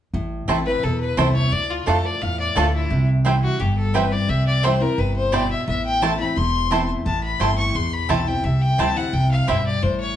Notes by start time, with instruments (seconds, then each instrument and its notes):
0.14 upright bass A1, steel-string acoustic guitar A2
0.48 upright bass A1, steel-string acoustic guitar E3 A3 C4 E4, five-string banjo A3 E4, mandolin C4 E4 C5 A5
0.66 steel-string acoustic guitar C4 E4, fiddle B4
0.83 upright bass B1, steel-string acoustic guitar E2, fiddle A4
1.00 fiddle B4
1.17 upright bass C2, steel-string acoustic guitar E3 A3 C4 E4, five-string banjo A3 E4, mandolin C4 E4 C5 A5, fiddle C5
1.35 steel-string acoustic guitar C4 E4, fiddle C#5
1.52 upright bass D2, steel-string acoustic guitar D3, fiddle D5
1.70 fiddle F4
1.86 upright bass F2, steel-string acoustic guitar D3 A3 D4 F4, mandolin A3 F4 D5 A5, five-string banjo A3 D4 F4, fiddle A4
2.05 fiddle D5
2.21 upright bass E2, steel-string acoustic guitar A2, fiddle F5
2.40 fiddle D5
2.55 upright bass D2, steel-string acoustic guitar D3 A3 D4 F4, mandolin A3 F4 D5 A5, five-string banjo A3 D4 F4, fiddle A4
2.74 fiddle E4
2.90 upright bass C2, steel-string acoustic guitar C3
3.25 steel-string acoustic guitar E3 G3 C4 E4, mandolin C4 E4 C5 G5, five-string banjo C4 E4
3.43 fiddle F#4
3.60 upright bass G1, steel-string acoustic guitar G2, fiddle G4
3.77 fiddle A4
3.94 steel-string acoustic guitar E3 G3 C4 E4, mandolin C4 E4 C5 G5, five-string banjo C4 E4, fiddle B4
4.12 fiddle D5
4.29 upright bass C2, steel-string acoustic guitar C3, fiddle E5
4.47 fiddle D5
4.63 steel-string acoustic guitar E3 G3 C4 E4, mandolin C4 E4 C5 G5, five-string banjo C4 E4, fiddle C5
4.80 steel-string acoustic guitar C4 E4, fiddle A#4
4.98 upright bass G1, steel-string acoustic guitar C3, fiddle B4
5.16 fiddle C5
5.32 steel-string acoustic guitar B2, mandolin C4 E4 C5 G5, five-string banjo C4 E4, fiddle D5
5.50 fiddle E5
5.68 upright bass A1, steel-string acoustic guitar A2, fiddle E5
5.85 fiddle G5
6.01 steel-string acoustic guitar E3 A3 C4 E4, five-string banjo A3 E4, mandolin C4 E4 C5 A5, fiddle A5
6.19 steel-string acoustic guitar C4 E4, fiddle B5
6.36 upright bass E1, steel-string acoustic guitar E2, fiddle C6
6.71 steel-string acoustic guitar E3 A3 C4 E4, five-string banjo A3 E4, mandolin C4 E4 C5 A5
7.06 upright bass A1, steel-string acoustic guitar A2, fiddle A5
7.23 fiddle B5
7.40 upright bass G1, steel-string acoustic guitar E3 A3 C4 E4, five-string banjo A3 E4, mandolin C4 E4 C5 A5, fiddle C6
7.58 fiddle C#6
7.75 upright bass A1, steel-string acoustic guitar E2, fiddle C6
7.93 fiddle B5
8.09 upright bass B1, steel-string acoustic guitar E3 A3 C4 E4, five-string banjo A3 E4, mandolin C4 E4 C5 A5, fiddle A5
8.27 steel-string acoustic guitar C4 E4, fiddle G5
8.44 upright bass C2, steel-string acoustic guitar C3, fiddle E5
8.61 fiddle G5
8.78 upright bass D2, steel-string acoustic guitar E3 G3 C4 E4, mandolin C4 E4 C5 G5, five-string banjo C4 E4, fiddle A5
8.96 steel-string acoustic guitar C4 E4, fiddle F#5
9.13 upright bass C2, steel-string acoustic guitar C3, fiddle G5
9.31 fiddle F5
9.47 upright bass B1, steel-string acoustic guitar G2, mandolin C4 E4 C5 G5, five-string banjo C4 E4, fiddle E5
9.66 fiddle D5
9.82 upright bass A1, steel-string acoustic guitar A2, fiddle C5
10.00 fiddle C#5